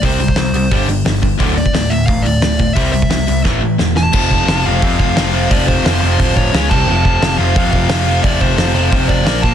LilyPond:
<<
  \new Staff \with { instrumentName = "Lead electric guitar" } { \time 4/4 \key f \major \tempo 4 = 176 c''4 c''4. r4. | r8 d''4 e''8 f''8 d''4. | e''8 e''4. r4. a''8~ | a''4. f''4 f''4. |
d''8 c''8 c''8 c''4 cis''4 a''8~ | a''4. f''4 f''4. | d''8 c''8 c''8 c''4 d''4 a''8 | }
  \new Staff \with { instrumentName = "Distorted electric guitar" } { \clef bass \time 4/4 \key f \major <c g c'>8 <c g>8 <c g>8 <c g>8 <g, d g>8 <g, d>8 <g, d>8 <g, d>8 | <d, a, d>8 <d, a,>8 <d, a,>8 <d, a,>8 <d, a,>8 <d, a,>8 <d, a,>8 <d, a,>8 | <c g c'>8 <c g>8 <c g>8 <c g>8 <a, e a>8 <a, e>8 <a, e>8 <a, e>8 | <f, c f>4 <f, c f>8 <f, c f>8 <f, c f>4 <f, c f>8 <f, c f>8 |
<f, c f>4 <f, c f>8 <f, c f>8 <f, c f>4 <cis gis cis'>8 <c g c'>8 | <f, c f>4 <f, c f>8 <f, c f>8 <f, c f>4 <f, c f>8 <f, c f>8 | <f, c f>4 <f, c f>8 <f, c f>8 <f, c f>4 <bes, f bes>8 <bes, f bes>8 | }
  \new Staff \with { instrumentName = "Overdriven electric guitar" } { \clef bass \time 4/4 \key f \major <c g c'>8 <c g>8 <c g>8 <c g>8 <g, d g>8 <g, d>8 <g, d>8 <g, d>8 | <d, a, d>8 <d, a,>8 <d, a,>8 <d, a,>8 <d, a,>8 <d, a,>8 <d, a,>8 <d, a,>8 | <c g c'>8 <c g>8 <c g>8 <c g>8 <a, e a>8 <a, e>8 <a, e>8 <a, e>8 | <f, c f>4 <f, c f>8 <f, c f>8 <f, c f>4 <f, c f>8 <f, c f>8 |
<f, c f>4 <f, c f>8 <f, c f>8 <f, c f>4 <cis gis cis'>8 <c g c'>8 | <f, c f>4 <f, c f>8 <f, c f>8 <f, c f>4 <f, c f>8 <f, c f>8 | <f, c f>4 <f, c f>8 <f, c f>8 <f, c f>4 <bes, f bes>8 <bes, f bes>8 | }
  \new Staff \with { instrumentName = "Picked electric bass" } { \clef bass \time 4/4 \key f \major c,4 c,8 c,8 g,,8 g,,8 g,,4 | d,,4 d,,8 d,,8 a,,8 d,,8 d,,4 | c,4 c,8 c,8 a,,8 a,,8 e,,4 | f,,4 f,,8 f,,8 f,8 f,,8 f,,4 |
f,,4 f,,8 f,,8 d,,4 cis,8 c,8 | f,,4 f,,8 f,,8 f,8 f,,8 f,,4 | f,,4 f,,8 f,,8 f,,4 bes,,8 bes,,8 | }
  \new DrumStaff \with { instrumentName = "Drums" } \drummode { \time 4/4 <hho bd>8 hho16 bd16 <hho sn>8 hho8 <hho bd>8 hho8 <hho sn>8 <hho bd>8 | <hho bd>8 hho16 bd16 <hho sn>8 hho8 <hho bd>8 hho8 <hho sn>8 <hho bd>8 | <hho bd>8 hho16 bd16 <hho sn>8 hho8 <bd sn>4 sn8 sn8 | <cymc bd>8 bd8 <hho sn>4 <hho bd>8 bd8 <hho sn>4 |
<hho bd>8 bd8 <hho sn>4 <hho bd>8 bd8 <hho sn>8 <cymc bd>8 | r8 bd8 <hho sn>4 <hho bd>8 bd8 <hho sn>4 | <hho bd>8 bd8 <hho sn>4 <hho bd>8 bd8 <hho sn>8 bd8 | }
>>